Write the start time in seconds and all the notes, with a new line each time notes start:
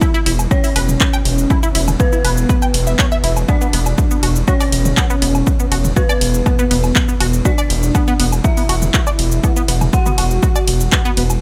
Already playing: E2 B2 E4 E5
0.01 E4, kick, low woodblock, shaker
0.14 E4, shaker
0.26 E1 E4, open hi-hat, ride
0.39 low woodblock, shaker
0.51 C#4 C#5, kick, shaker
0.64 E4, open hi-hat, shaker
0.76 E1 B4, open hi-hat, ride, low woodblock
0.89 mid tom, shaker
1.01 B4, kick, clap, shaker
1.13 G5, low woodblock, shaker
1.25 E1, open hi-hat, ride
1.38 shaker
1.50 E4, kick, low woodblock, shaker
1.63 E4, shaker
1.75 E1 E4, open hi-hat, ride
1.88 mid tom, low woodblock, shaker
2.00 B3 B4, kick, shaker
2.13 E4, shaker
2.25 E1 B4, open hi-hat, ride, low woodblock
2.37 shaker
2.49 B4, kick, shaker
2.62 G5, low woodblock, shaker
2.74 E1, open hi-hat, ride
2.87 E5, shaker
2.99 C#5, kick, clap, low woodblock, shaker
3.12 E5, shaker
3.24 E1 E4, open hi-hat, ride
3.37 low woodblock, shaker
3.48 B3 D4 D5, kick, low woodblock, shaker
3.61 B3, shaker
3.73 E1 B3, open hi-hat, ride
3.86 low woodblock, shaker
3.98 kick, shaker
4.11 B3, shaker
4.23 E1 F#4, open hi-hat, ride, low woodblock
4.36 shaker
4.48 C#4 F#4 C#5, kick, shaker
4.60 D5, open hi-hat, low woodblock, shaker
4.72 E1, open hi-hat, ride
4.85 mid tom, shaker
4.97 B3, kick, clap, low woodblock, shaker
5.10 B3, shaker
5.22 E1 B3, open hi-hat, ride
5.35 low woodblock, shaker
5.47 kick, shaker
5.60 B3, shaker
5.72 E1 F#4, open hi-hat, ride, low woodblock
5.84 mid tom, shaker
5.96 B3 F#4 B4, kick, shaker
6.09 D5, low woodblock, shaker
6.21 E1, open hi-hat, ride
6.34 shaker
6.46 B3, kick, low woodblock, shaker
6.59 B3, shaker
6.71 E1 B3, open hi-hat, ride
6.84 low woodblock, shaker
6.96 kick, clap, shaker
7.08 B3, shaker
7.20 E1 F#4, open hi-hat, ride, low woodblock
7.33 shaker
7.45 D4 F#4 D5, kick, shaker
7.58 D5, low woodblock, shaker
7.70 E1, open hi-hat, ride
7.83 shaker
7.95 B3, kick, low woodblock, shaker
8.08 B3, shaker
8.20 E1 B3, open hi-hat, ride
8.32 low woodblock, shaker
8.44 E4 E5, kick, shaker
8.57 B3, open hi-hat, shaker
8.69 E1 F#4, open hi-hat, ride, low woodblock
8.82 mid tom, shaker
8.94 F#4, kick, clap, shaker
9.07 D5, low woodblock, shaker
9.19 E1, open hi-hat, ride
9.32 shaker
9.44 B3, kick, low woodblock, shaker
9.56 B3, shaker
9.68 E1 B3, open hi-hat, ride
9.81 mid tom, low woodblock, shaker
9.93 F#4 F#5, kick, shaker
10.06 B3, mid tom, shaker
10.18 E1 F#4, open hi-hat, ride, low woodblock
10.31 shaker
10.43 F#4, kick, shaker
10.56 D5, low woodblock, shaker
10.68 E1, open hi-hat, ride
10.80 shaker
10.92 B3, kick, clap, low woodblock, shaker
11.05 B3, shaker
11.17 E1 B3, open hi-hat, ride
11.30 low woodblock, shaker